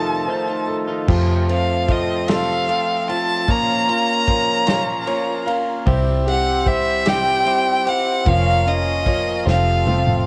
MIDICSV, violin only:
0, 0, Header, 1, 2, 480
1, 0, Start_track
1, 0, Tempo, 800000
1, 650, Time_signature, 6, 3, 24, 8
1, 6159, End_track
2, 0, Start_track
2, 0, Title_t, "Violin"
2, 0, Program_c, 0, 40
2, 0, Note_on_c, 0, 81, 94
2, 414, Note_off_c, 0, 81, 0
2, 911, Note_on_c, 0, 77, 71
2, 1150, Note_on_c, 0, 75, 71
2, 1159, Note_off_c, 0, 77, 0
2, 1381, Note_off_c, 0, 75, 0
2, 1387, Note_on_c, 0, 77, 83
2, 1834, Note_off_c, 0, 77, 0
2, 1863, Note_on_c, 0, 81, 97
2, 2104, Note_on_c, 0, 82, 101
2, 2113, Note_off_c, 0, 81, 0
2, 3289, Note_off_c, 0, 82, 0
2, 3773, Note_on_c, 0, 78, 92
2, 4004, Note_on_c, 0, 76, 92
2, 4013, Note_off_c, 0, 78, 0
2, 4245, Note_on_c, 0, 79, 109
2, 4254, Note_off_c, 0, 76, 0
2, 4730, Note_on_c, 0, 78, 94
2, 4739, Note_off_c, 0, 79, 0
2, 4965, Note_on_c, 0, 77, 96
2, 4974, Note_off_c, 0, 78, 0
2, 5208, Note_on_c, 0, 75, 89
2, 5217, Note_off_c, 0, 77, 0
2, 5686, Note_off_c, 0, 75, 0
2, 5694, Note_on_c, 0, 77, 76
2, 6159, Note_off_c, 0, 77, 0
2, 6159, End_track
0, 0, End_of_file